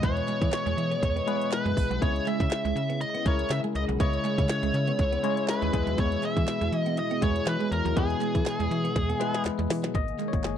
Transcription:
Already playing: B2 E3 G#3 B3 E4 G#4 B4 D#5
0.02 E2 G#3 B3 E4 G#4 B4 C#5, kick, closed hi-hat
0.17 closed hi-hat
0.28 G#3, clap, closed hi-hat
0.42 E3, kick, closed hi-hat
0.52 C#5, snare, clap, closed hi-hat, tambourine
0.66 E2 G#3, closed hi-hat
0.77 E3, muted clean electric guitar stroke, closed hi-hat
0.91 B3, closed hi-hat
1.03 E2, muted clean electric guitar stroke, kick, closed hi-hat
1.16 B3, closed hi-hat
1.27 G#3 B3 E4 G#4 B4, closed hi-hat
1.42 closed hi-hat
1.51 B4, snare, clap, closed hi-hat, tambourine
1.65 F#2 G#3, closed hi-hat
1.77 A#1, muted clean electric guitar stroke, kick, open hi-hat
1.90 B1 F#3, closed hi-hat
2.01 C#2 C#3 G#3 B3 C#4 E4 G#4 C#5, kick, closed hi-hat
2.16 closed hi-hat
2.26 G#3 E5, clap, closed hi-hat
2.40 C#3, muted clean electric guitar stroke, kick, closed hi-hat
2.51 snare, clap, closed hi-hat, tambourine
2.65 C#2 G#3, closed hi-hat
2.76 C#3, muted clean electric guitar stroke, closed hi-hat
2.89 B3, closed hi-hat
3.01 D#5, muted clean electric guitar stroke, closed hi-hat
3.14 B3, closed hi-hat
3.25 C#2 G#3 C#4 E4 G#4 A#4 C#5, kick, closed hi-hat
3.39 closed hi-hat
3.50 C#3 E5, snare, clap, closed hi-hat, tambourine
3.64 G#3, closed hi-hat
3.75 C#2 D#5, muted clean electric guitar stroke, closed hi-hat
3.88 B1 F#3, closed hi-hat
3.99 C#2 C#3 G#3 B3 C#4 E4 G#4 C#5 D#5, kick, closed hi-hat
4.13 closed hi-hat
4.25 G#3, clap, closed hi-hat
4.38 C#3, muted clean electric guitar stroke, kick, closed hi-hat
4.49 C#5, snare, clap, closed hi-hat, tambourine
4.63 C#2 G#3, closed hi-hat
4.74 C#3, muted clean electric guitar stroke, closed hi-hat
4.87 B3, closed hi-hat
4.99 C#2, muted clean electric guitar stroke, kick, closed hi-hat
5.12 B3, closed hi-hat
5.23 G#3 C#4 E4 G#4 C#5, closed hi-hat
5.37 closed hi-hat
5.48 B4, snare, clap, closed hi-hat, tambourine
5.62 D#2 G#3, closed hi-hat
5.73 E2 B2 E3 G#3 B3 E4 G#4 B4, muted clean electric guitar stroke, kick, closed hi-hat
5.87 D#2 F#3, closed hi-hat
5.98 E2 B3 C#5, kick, closed hi-hat
6.12 closed hi-hat
6.23 G#3 E5, clap, closed hi-hat
6.37 E3, muted clean electric guitar stroke, kick, closed hi-hat
6.48 snare, clap, closed hi-hat, tambourine
6.61 E2 G#3, closed hi-hat
6.72 E3, muted clean electric guitar stroke, closed hi-hat
6.78 D#5
6.86 B3, closed hi-hat
6.97 D#5, muted clean electric guitar stroke, closed hi-hat
7.11 B3, closed hi-hat
7.21 E2 G#3 B3 E4 G#4 C#5, kick, closed hi-hat
7.36 closed hi-hat
7.46 E3 B4, snare, clap, closed hi-hat, tambourine
7.60 G#3, closed hi-hat
7.71 E2 E3 A#4, muted clean electric guitar stroke, closed hi-hat
7.85 D#2 F#3, closed hi-hat
7.96 E2 G#3 B3 E4 G#4 B4, kick, closed hi-hat
8.10 closed hi-hat
8.21 G#3, clap, closed hi-hat
8.35 E3, kick, closed hi-hat
8.46 snare, clap, closed hi-hat, tambourine
8.59 E2 G#3, closed hi-hat
8.71 E3, muted clean electric guitar stroke, closed hi-hat
8.84 B3, closed hi-hat
8.96 E2, muted clean electric guitar stroke, kick, snare, closed hi-hat
9.09 B3, closed hi-hat
9.20 G#3 B3 E4 G#4 B4, snare, closed hi-hat
9.34 snare, closed hi-hat
9.45 E2, snare, clap, closed hi-hat
9.59 E2 G#3, closed hi-hat
9.70 E3, muted clean electric guitar stroke, snare, open hi-hat
9.83 F#3, snare, closed hi-hat
9.94 G#1 D#3 A#3 G#4 D#5, kick, closed hi-hat
10.08 closed hi-hat
10.19 D#3 G#3 A#3, clap, closed hi-hat
10.28 C#5
10.33 G#1, muted clean electric guitar stroke, kick, closed hi-hat
10.44 F#1 G#4, snare, clap, closed hi-hat

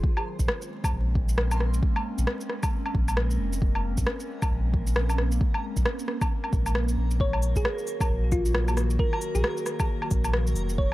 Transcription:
0.03 G#3 A#3 C4 C#4 A#4, kick
0.17 low woodblock
0.39 A#1, kick, shaker
0.48 cross-stick
0.62 shaker
0.84 kick, low woodblock, shaker
0.92 A#1
1.15 kick
1.29 shaker
1.38 cross-stick
1.51 low woodblock, shaker
1.60 cross-stick
1.74 shaker
1.83 kick
1.96 low woodblock
2.18 A#1, shaker
2.27 cross-stick
2.41 shaker
2.50 cross-stick
2.63 kick, low woodblock, shaker
2.86 low woodblock
2.95 A#1, kick
3.08 low woodblock, shaker
3.17 cross-stick
3.31 shaker
3.39 F1
3.53 shaker
3.62 kick
3.75 low woodblock
3.97 A#1, kick, shaker
4.07 cross-stick
4.20 shaker
4.42 kick, low woodblock, shaker
4.51 A#1
4.74 kick
4.87 shaker
4.96 cross-stick
5.09 low woodblock, shaker
5.18 cross-stick
5.32 shaker
5.41 kick
5.54 low woodblock
5.76 A#1, kick, shaker
5.86 cross-stick
5.99 shaker
6.08 cross-stick
6.21 kick, low woodblock, shaker
6.44 low woodblock
6.53 A#1, kick, shaker
6.66 low woodblock, shaker
6.75 cross-stick
6.89 shaker
6.97 A#1
7.11 shaker
7.19 D#3 F#3 F#4 C#5, kick
7.33 low woodblock
7.42 cabasa
7.56 A#1 G#4, kick, shaker
7.65 cross-stick
7.78 shaker
7.87 cabasa
8.01 kick, low woodblock, shaker
8.09 A#1
8.32 F4, kick, cabasa
8.45 shaker
8.55 cross-stick
8.68 low woodblock, shaker
8.77 cross-stick, cabasa
8.90 shaker
8.99 A#4, kick
9.13 low woodblock
9.22 cabasa
9.35 A#1 G#4, shaker
9.44 cross-stick
9.57 shaker
9.66 cross-stick, cabasa
9.80 kick, low woodblock, shaker
10.02 low woodblock
10.11 A#1, kick, cabasa
10.24 low woodblock, shaker
10.33 cross-stick
10.47 shaker
10.55 F1, cabasa
10.69 shaker
10.78 G#4 C#5, kick

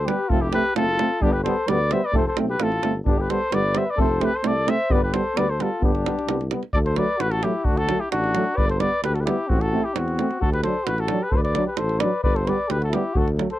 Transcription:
0.05 G3 B3 G4 B4, davul high
0.29 F1 A3 C4 F4 A4, davul low
0.41 E4 G4
0.51 A3 C4 G4 B4, davul high
0.75 F#1 A3 C4 F4 A4, davul high
0.98 A3 C4, davul high
1.22 G1 G3 B3 D4 G4, davul low
1.32 G4 B4
1.44 G3 B3 A4 C5, davul high
1.67 D2 G3 B3 B4 D5, davul high
1.91 G3 B3 C5 E5, davul high
2.04 B4 D5
2.13 F1 A3 C4 A4 C5, davul low
2.27 A4 C5
2.37 B1 A3 C4, davul high
2.49 G4 B4
2.59 A1 A3 C4 F4 A4, davul high
2.72 davul high
2.82 G1 A3 C4, davul high
3.05 G1 G3 B3 D4 G4, davul low
3.18 G4 B4
3.30 G3 B3 A4 C5, davul high
3.51 G1 G3 B3 B4 D5, davul high
3.74 G3 B3 C5 E5, davul high
3.86 B4
3.90 D5
3.97 F1 A3 C4 A4, davul low
4.01 C5
4.21 A3 C4 G4 B4, davul high
4.34 A4 C5
4.44 C2 A3 C4 A4 D5, davul high
4.66 A3 C4 C5 E5, davul high
4.89 G1 G3 B3 B4 D5, davul low
5.03 G4 B4
5.12 G3 B3 A4 C5, davul high
5.36 D2 G3 B3 B4 D5, davul high
5.50 A4 C5
5.59 G3 B3 F4 A4, davul high
5.81 G1 G3 B3 D4 G4, davul low
5.95 davul high
6.06 G3 B3, davul high
6.19 davul high
6.27 C2 G3 B3, davul high
6.41 davul high
6.51 G3 B3, davul high
6.63 davul high
6.73 D2 A4 D5, davul low
6.85 A4 C5, davul high
6.96 F#3 A3 B4 D5, davul high
7.18 A1 F#4 B4, davul high
7.29 F#4 A4, davul high
7.43 F#3 A3 E4 G4, davul high
7.64 D2 D4 F#4, davul low
7.77 F#4 A4, davul high
7.88 F#3 A3, davul high
8.00 E4 G4
8.10 A1 D4 F#4, davul high
8.24 davul high
8.35 F#3 A3, davul high
8.55 G1 B4 D5, davul low
8.68 A4 C5, davul high
8.78 G3 B3 B4 D5, davul high
9.03 D2 G4 B4, davul high
9.14 F#4 A4, davul high
9.20 G4 B4
9.24 G3 B3 E4 G4, davul high
9.47 A1 C4 F#4, davul low
9.60 F#4 A4, davul high
9.72 A3 C4
9.82 E4 G4
9.94 E2 C4 F#4, davul high
10.08 davul high
10.18 A3 C4, davul high
10.31 davul high
10.39 D2 F#4 A4, davul low
10.51 G4 B4, davul high
10.62 F#3 D4 A4 C5, davul high
10.84 A1 F#4 B4, davul high
10.97 F#4 A4, davul high
11.08 F#3 D4, davul high
11.19 G4 B4
11.29 D2 A4 C5, davul low
11.35 B4 D5
11.43 B4 D5, davul high
11.55 F#3 D4, davul high
11.66 G4 B4
11.76 A1 A4 C5, davul high
11.89 davul high
11.99 F#3 D4 B4 D5, davul high
12.23 G1 B4 D5, davul low
12.35 A4 C5, davul high
12.46 G3 B3 B4 D5, davul high
12.68 D2 G4 B4, davul high
12.80 F#4 A4, davul high
12.90 B3 E4, davul high
12.94 G3 G4
13.14 D2 F#4 A4, davul low
13.28 davul high
13.38 F#3 A3, davul high
13.50 A4 C5, davul high

